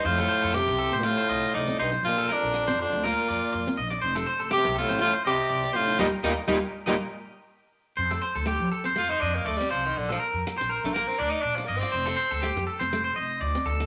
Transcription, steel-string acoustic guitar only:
X:1
M:4/4
L:1/16
Q:"Swing 16ths" 1/4=121
K:Fmix
V:1 name="Steel-string acoustic guitar"
z A,2 z A, B,2 C A,2 z3 C2 E | z B,2 z B, C2 D B,2 z3 C2 D | z A,2 z A, B,2 C A,2 z3 C2 E | [G,B,E] z [G,B,E] z [G,B,E] z2 [G,B,E] z8 |
z A,2 z A, z2 C A,2 z3 C2 z | z B,2 z B, C2 D B,2 z3 D2 F | z A,2 z A, B,2 C A,2 z3 C2 z |]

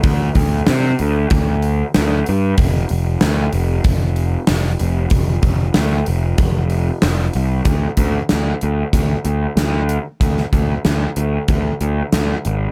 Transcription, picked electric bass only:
X:1
M:4/4
L:1/8
Q:1/4=94
K:F
V:1 name="Picked electric bass" clef=bass
D,, D,, C, D,, D,,2 D,, G,, | F,,, F,,, D,, F,,, F,,,2 F,,, F,,, | F,,, F,,, D,, F,,, F,,,2 F,,, C,, | D,, D,, D,, D,, D,, D,, D,,2 |
D,, D,, D,, D,, D,, D,, D,, ^G,,, |]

